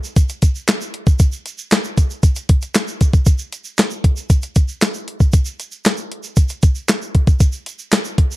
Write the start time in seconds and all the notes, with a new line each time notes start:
0.04 shaker
0.16 kick, closed hi-hat, shaker
0.29 closed hi-hat, shaker
0.42 kick, closed hi-hat, shaker
0.55 shaker
0.68 snare, clap, closed hi-hat, shaker
0.81 shaker
0.94 closed hi-hat
1.07 kick, shaker
1.19 kick, closed hi-hat, shaker
1.32 shaker
1.46 closed hi-hat, shaker
1.58 shaker
1.71 snare, clap, closed hi-hat, shaker
1.84 shaker
1.97 kick, closed hi-hat, shaker
2.10 shaker
2.23 kick, closed hi-hat, shaker
2.36 closed hi-hat, shaker
2.49 kick, closed hi-hat
2.62 closed hi-hat, shaker
2.75 snare, clap, closed hi-hat, shaker
2.88 shaker
3.01 kick, closed hi-hat, shaker
3.13 kick, shaker
3.26 kick, closed hi-hat, shaker
3.39 shaker
3.52 closed hi-hat, shaker
3.64 shaker
3.78 snare, clap, closed hi-hat, shaker
3.90 shaker
4.04 kick, closed hi-hat
4.17 shaker
4.30 kick, closed hi-hat, shaker
4.42 closed hi-hat, shaker
4.56 kick, closed hi-hat, shaker
4.68 shaker
4.82 snare, clap, closed hi-hat, shaker
4.94 shaker
5.08 closed hi-hat
5.20 kick, shaker
5.32 kick, closed hi-hat, shaker
5.45 shaker
5.60 closed hi-hat, shaker
5.71 shaker
5.85 snare, clap, closed hi-hat, shaker
5.97 shaker
6.12 closed hi-hat
6.23 shaker
6.36 kick, closed hi-hat, shaker
6.49 closed hi-hat, shaker
6.62 kick, closed hi-hat, shaker
6.75 shaker
6.89 snare, clap, closed hi-hat, shaker
7.02 shaker
7.15 kick, closed hi-hat
7.27 kick, shaker
7.40 kick, closed hi-hat, shaker
7.53 shaker
7.66 closed hi-hat, shaker
7.79 shaker
7.92 snare, clap, closed hi-hat, shaker
8.05 shaker
8.18 kick, closed hi-hat
8.31 shaker